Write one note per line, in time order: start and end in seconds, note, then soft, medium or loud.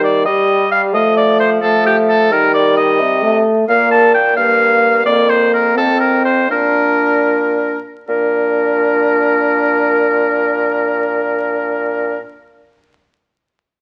0.00 0.27 D#3 medium
0.00 0.25 G3 medium
0.00 0.25 D5 medium
0.25 0.96 G3 medium
0.25 0.71 D#5 medium
0.71 0.82 F5 medium
0.94 2.31 F3 medium
0.94 1.62 A3 medium
0.94 1.16 D#5 medium
1.17 1.39 D5 medium
1.40 1.50 C5 medium
1.62 2.33 A3 medium
1.62 1.85 A4 medium
1.86 1.96 G4 medium
2.09 2.33 A4 medium
2.31 3.01 D#3 medium
2.31 3.24 G3 medium
2.31 2.53 A#4 medium
2.54 2.76 D5 medium
2.77 3.39 D#5 medium
3.00 3.44 C3 medium
3.22 3.67 A3 medium
3.68 4.38 A#2 medium
3.68 4.12 A#3 medium
3.68 3.90 F5 medium
3.91 4.13 A5 medium
4.14 4.36 G5 medium
4.36 5.05 G2 medium
4.36 5.01 A#3 medium
4.36 5.04 F5 medium
5.05 5.75 F2 medium
5.05 5.77 A#3 medium
5.05 5.31 D5 loud
5.30 5.53 C5 medium
5.53 5.76 A#4 medium
5.76 6.52 F2 medium
5.76 6.49 C4 medium
5.76 6.00 A4 medium
6.00 6.24 A#4 medium
6.25 6.49 C5 medium
6.50 7.81 A#2 medium
6.50 7.78 D4 medium
6.50 7.79 A#4 medium
8.08 12.18 A#2 medium
8.08 12.17 D4 medium
8.08 12.17 A#4 medium